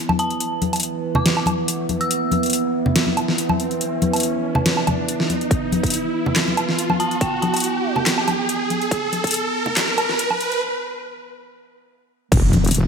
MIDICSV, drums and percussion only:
0, 0, Header, 1, 2, 480
1, 0, Start_track
1, 0, Tempo, 425532
1, 456, Time_signature, 4, 2, 24, 8
1, 14523, End_track
2, 0, Start_track
2, 0, Title_t, "Drums"
2, 103, Note_on_c, 9, 77, 73
2, 105, Note_on_c, 9, 63, 97
2, 215, Note_off_c, 9, 77, 0
2, 215, Note_on_c, 9, 42, 55
2, 217, Note_off_c, 9, 63, 0
2, 328, Note_off_c, 9, 42, 0
2, 344, Note_on_c, 9, 42, 38
2, 456, Note_off_c, 9, 42, 0
2, 456, Note_on_c, 9, 42, 75
2, 569, Note_off_c, 9, 42, 0
2, 696, Note_on_c, 9, 42, 50
2, 697, Note_on_c, 9, 63, 83
2, 809, Note_off_c, 9, 42, 0
2, 810, Note_off_c, 9, 63, 0
2, 824, Note_on_c, 9, 42, 49
2, 824, Note_on_c, 9, 77, 57
2, 855, Note_off_c, 9, 42, 0
2, 855, Note_on_c, 9, 42, 63
2, 899, Note_off_c, 9, 42, 0
2, 899, Note_on_c, 9, 42, 80
2, 937, Note_off_c, 9, 42, 0
2, 937, Note_off_c, 9, 77, 0
2, 937, Note_on_c, 9, 42, 80
2, 1050, Note_off_c, 9, 42, 0
2, 1296, Note_on_c, 9, 64, 101
2, 1304, Note_on_c, 9, 77, 59
2, 1409, Note_off_c, 9, 64, 0
2, 1416, Note_off_c, 9, 77, 0
2, 1417, Note_on_c, 9, 38, 122
2, 1417, Note_on_c, 9, 42, 78
2, 1530, Note_off_c, 9, 38, 0
2, 1530, Note_off_c, 9, 42, 0
2, 1544, Note_on_c, 9, 77, 75
2, 1646, Note_on_c, 9, 63, 78
2, 1656, Note_off_c, 9, 77, 0
2, 1656, Note_on_c, 9, 42, 54
2, 1656, Note_on_c, 9, 77, 75
2, 1759, Note_off_c, 9, 63, 0
2, 1769, Note_off_c, 9, 42, 0
2, 1769, Note_off_c, 9, 77, 0
2, 1897, Note_on_c, 9, 42, 81
2, 2009, Note_off_c, 9, 42, 0
2, 2134, Note_on_c, 9, 42, 52
2, 2134, Note_on_c, 9, 63, 69
2, 2247, Note_off_c, 9, 42, 0
2, 2247, Note_off_c, 9, 63, 0
2, 2264, Note_on_c, 9, 42, 38
2, 2376, Note_off_c, 9, 42, 0
2, 2376, Note_on_c, 9, 42, 79
2, 2489, Note_off_c, 9, 42, 0
2, 2611, Note_on_c, 9, 63, 82
2, 2615, Note_on_c, 9, 42, 49
2, 2724, Note_off_c, 9, 63, 0
2, 2728, Note_off_c, 9, 42, 0
2, 2744, Note_on_c, 9, 42, 44
2, 2775, Note_off_c, 9, 42, 0
2, 2775, Note_on_c, 9, 42, 63
2, 2817, Note_off_c, 9, 42, 0
2, 2817, Note_on_c, 9, 42, 75
2, 2855, Note_off_c, 9, 42, 0
2, 2855, Note_on_c, 9, 42, 77
2, 2967, Note_off_c, 9, 42, 0
2, 3225, Note_on_c, 9, 64, 91
2, 3335, Note_on_c, 9, 38, 125
2, 3335, Note_on_c, 9, 42, 76
2, 3337, Note_off_c, 9, 64, 0
2, 3448, Note_off_c, 9, 38, 0
2, 3448, Note_off_c, 9, 42, 0
2, 3457, Note_on_c, 9, 63, 63
2, 3570, Note_off_c, 9, 63, 0
2, 3577, Note_on_c, 9, 42, 53
2, 3577, Note_on_c, 9, 77, 77
2, 3690, Note_off_c, 9, 42, 0
2, 3690, Note_off_c, 9, 77, 0
2, 3705, Note_on_c, 9, 38, 39
2, 3816, Note_on_c, 9, 42, 76
2, 3817, Note_off_c, 9, 38, 0
2, 3928, Note_off_c, 9, 42, 0
2, 3940, Note_on_c, 9, 63, 92
2, 3943, Note_on_c, 9, 77, 75
2, 4053, Note_off_c, 9, 63, 0
2, 4056, Note_off_c, 9, 77, 0
2, 4057, Note_on_c, 9, 42, 48
2, 4170, Note_off_c, 9, 42, 0
2, 4184, Note_on_c, 9, 42, 34
2, 4297, Note_off_c, 9, 42, 0
2, 4297, Note_on_c, 9, 42, 76
2, 4409, Note_off_c, 9, 42, 0
2, 4533, Note_on_c, 9, 63, 97
2, 4535, Note_on_c, 9, 42, 49
2, 4646, Note_off_c, 9, 63, 0
2, 4648, Note_off_c, 9, 42, 0
2, 4664, Note_on_c, 9, 42, 46
2, 4664, Note_on_c, 9, 77, 59
2, 4696, Note_off_c, 9, 42, 0
2, 4696, Note_on_c, 9, 42, 61
2, 4738, Note_off_c, 9, 42, 0
2, 4738, Note_on_c, 9, 42, 71
2, 4774, Note_off_c, 9, 42, 0
2, 4774, Note_on_c, 9, 42, 75
2, 4777, Note_off_c, 9, 77, 0
2, 4887, Note_off_c, 9, 42, 0
2, 5133, Note_on_c, 9, 64, 98
2, 5141, Note_on_c, 9, 77, 65
2, 5246, Note_off_c, 9, 64, 0
2, 5253, Note_off_c, 9, 77, 0
2, 5254, Note_on_c, 9, 38, 121
2, 5254, Note_on_c, 9, 42, 77
2, 5366, Note_off_c, 9, 38, 0
2, 5366, Note_off_c, 9, 42, 0
2, 5383, Note_on_c, 9, 77, 77
2, 5496, Note_off_c, 9, 77, 0
2, 5496, Note_on_c, 9, 42, 51
2, 5496, Note_on_c, 9, 63, 84
2, 5496, Note_on_c, 9, 77, 79
2, 5499, Note_on_c, 9, 64, 85
2, 5609, Note_off_c, 9, 42, 0
2, 5609, Note_off_c, 9, 63, 0
2, 5609, Note_off_c, 9, 77, 0
2, 5612, Note_off_c, 9, 64, 0
2, 5735, Note_on_c, 9, 42, 77
2, 5848, Note_off_c, 9, 42, 0
2, 5865, Note_on_c, 9, 38, 39
2, 5974, Note_on_c, 9, 63, 66
2, 5977, Note_on_c, 9, 42, 49
2, 5978, Note_off_c, 9, 38, 0
2, 6086, Note_off_c, 9, 63, 0
2, 6090, Note_off_c, 9, 42, 0
2, 6105, Note_on_c, 9, 42, 35
2, 6213, Note_on_c, 9, 36, 117
2, 6216, Note_off_c, 9, 42, 0
2, 6216, Note_on_c, 9, 42, 77
2, 6326, Note_off_c, 9, 36, 0
2, 6329, Note_off_c, 9, 42, 0
2, 6454, Note_on_c, 9, 63, 96
2, 6458, Note_on_c, 9, 42, 51
2, 6567, Note_off_c, 9, 63, 0
2, 6571, Note_off_c, 9, 42, 0
2, 6581, Note_on_c, 9, 36, 60
2, 6584, Note_on_c, 9, 42, 47
2, 6615, Note_off_c, 9, 42, 0
2, 6615, Note_on_c, 9, 42, 60
2, 6659, Note_off_c, 9, 42, 0
2, 6659, Note_on_c, 9, 42, 73
2, 6694, Note_off_c, 9, 36, 0
2, 6696, Note_off_c, 9, 42, 0
2, 6696, Note_on_c, 9, 42, 77
2, 6809, Note_off_c, 9, 42, 0
2, 7064, Note_on_c, 9, 64, 85
2, 7175, Note_on_c, 9, 38, 118
2, 7175, Note_on_c, 9, 39, 85
2, 7175, Note_on_c, 9, 42, 74
2, 7177, Note_off_c, 9, 64, 0
2, 7287, Note_off_c, 9, 38, 0
2, 7287, Note_off_c, 9, 39, 0
2, 7287, Note_off_c, 9, 42, 0
2, 7308, Note_on_c, 9, 63, 63
2, 7415, Note_on_c, 9, 42, 52
2, 7415, Note_on_c, 9, 77, 85
2, 7421, Note_off_c, 9, 63, 0
2, 7528, Note_off_c, 9, 42, 0
2, 7528, Note_off_c, 9, 77, 0
2, 7542, Note_on_c, 9, 38, 35
2, 7654, Note_on_c, 9, 42, 75
2, 7655, Note_off_c, 9, 38, 0
2, 7767, Note_off_c, 9, 42, 0
2, 7778, Note_on_c, 9, 63, 94
2, 7782, Note_on_c, 9, 77, 80
2, 7891, Note_off_c, 9, 63, 0
2, 7895, Note_off_c, 9, 77, 0
2, 7895, Note_on_c, 9, 42, 52
2, 8008, Note_off_c, 9, 42, 0
2, 8024, Note_on_c, 9, 42, 35
2, 8133, Note_off_c, 9, 42, 0
2, 8133, Note_on_c, 9, 36, 118
2, 8133, Note_on_c, 9, 42, 77
2, 8246, Note_off_c, 9, 36, 0
2, 8246, Note_off_c, 9, 42, 0
2, 8374, Note_on_c, 9, 42, 52
2, 8379, Note_on_c, 9, 63, 85
2, 8487, Note_off_c, 9, 42, 0
2, 8492, Note_off_c, 9, 63, 0
2, 8502, Note_on_c, 9, 42, 46
2, 8502, Note_on_c, 9, 77, 65
2, 8533, Note_off_c, 9, 42, 0
2, 8533, Note_on_c, 9, 42, 64
2, 8576, Note_off_c, 9, 42, 0
2, 8576, Note_on_c, 9, 42, 78
2, 8615, Note_off_c, 9, 42, 0
2, 8615, Note_off_c, 9, 77, 0
2, 8615, Note_on_c, 9, 42, 82
2, 8728, Note_off_c, 9, 42, 0
2, 8977, Note_on_c, 9, 64, 91
2, 8983, Note_on_c, 9, 77, 67
2, 9090, Note_off_c, 9, 64, 0
2, 9095, Note_off_c, 9, 77, 0
2, 9097, Note_on_c, 9, 38, 121
2, 9097, Note_on_c, 9, 39, 87
2, 9097, Note_on_c, 9, 42, 80
2, 9210, Note_off_c, 9, 38, 0
2, 9210, Note_off_c, 9, 39, 0
2, 9210, Note_off_c, 9, 42, 0
2, 9225, Note_on_c, 9, 77, 80
2, 9335, Note_on_c, 9, 63, 86
2, 9337, Note_off_c, 9, 77, 0
2, 9337, Note_on_c, 9, 42, 54
2, 9337, Note_on_c, 9, 77, 83
2, 9448, Note_off_c, 9, 63, 0
2, 9449, Note_off_c, 9, 42, 0
2, 9449, Note_off_c, 9, 77, 0
2, 9577, Note_on_c, 9, 42, 82
2, 9690, Note_off_c, 9, 42, 0
2, 9817, Note_on_c, 9, 42, 51
2, 9817, Note_on_c, 9, 63, 71
2, 9930, Note_off_c, 9, 42, 0
2, 9930, Note_off_c, 9, 63, 0
2, 9944, Note_on_c, 9, 42, 36
2, 10054, Note_on_c, 9, 36, 115
2, 10056, Note_off_c, 9, 42, 0
2, 10056, Note_on_c, 9, 42, 82
2, 10167, Note_off_c, 9, 36, 0
2, 10169, Note_off_c, 9, 42, 0
2, 10292, Note_on_c, 9, 63, 79
2, 10296, Note_on_c, 9, 42, 54
2, 10405, Note_off_c, 9, 63, 0
2, 10409, Note_off_c, 9, 42, 0
2, 10423, Note_on_c, 9, 36, 60
2, 10424, Note_on_c, 9, 42, 50
2, 10457, Note_off_c, 9, 42, 0
2, 10457, Note_on_c, 9, 42, 67
2, 10499, Note_off_c, 9, 42, 0
2, 10499, Note_on_c, 9, 42, 79
2, 10535, Note_off_c, 9, 36, 0
2, 10535, Note_off_c, 9, 42, 0
2, 10535, Note_on_c, 9, 42, 82
2, 10648, Note_off_c, 9, 42, 0
2, 10895, Note_on_c, 9, 64, 99
2, 11008, Note_off_c, 9, 64, 0
2, 11016, Note_on_c, 9, 38, 119
2, 11016, Note_on_c, 9, 39, 92
2, 11016, Note_on_c, 9, 42, 86
2, 11129, Note_off_c, 9, 38, 0
2, 11129, Note_off_c, 9, 39, 0
2, 11129, Note_off_c, 9, 42, 0
2, 11141, Note_on_c, 9, 63, 60
2, 11254, Note_off_c, 9, 63, 0
2, 11256, Note_on_c, 9, 42, 55
2, 11256, Note_on_c, 9, 77, 85
2, 11369, Note_off_c, 9, 42, 0
2, 11369, Note_off_c, 9, 77, 0
2, 11384, Note_on_c, 9, 38, 35
2, 11495, Note_on_c, 9, 42, 82
2, 11497, Note_off_c, 9, 38, 0
2, 11608, Note_off_c, 9, 42, 0
2, 11621, Note_on_c, 9, 63, 84
2, 11625, Note_on_c, 9, 77, 84
2, 11734, Note_off_c, 9, 63, 0
2, 11737, Note_on_c, 9, 42, 54
2, 11738, Note_off_c, 9, 77, 0
2, 11850, Note_off_c, 9, 42, 0
2, 11863, Note_on_c, 9, 42, 40
2, 11976, Note_off_c, 9, 42, 0
2, 13895, Note_on_c, 9, 36, 123
2, 13896, Note_on_c, 9, 42, 81
2, 13896, Note_on_c, 9, 49, 104
2, 14008, Note_off_c, 9, 36, 0
2, 14009, Note_off_c, 9, 42, 0
2, 14009, Note_off_c, 9, 49, 0
2, 14136, Note_on_c, 9, 42, 53
2, 14138, Note_on_c, 9, 63, 96
2, 14249, Note_off_c, 9, 42, 0
2, 14250, Note_off_c, 9, 63, 0
2, 14264, Note_on_c, 9, 42, 51
2, 14296, Note_off_c, 9, 42, 0
2, 14296, Note_on_c, 9, 42, 66
2, 14337, Note_off_c, 9, 42, 0
2, 14337, Note_on_c, 9, 42, 85
2, 14376, Note_off_c, 9, 42, 0
2, 14376, Note_on_c, 9, 42, 87
2, 14488, Note_off_c, 9, 42, 0
2, 14523, End_track
0, 0, End_of_file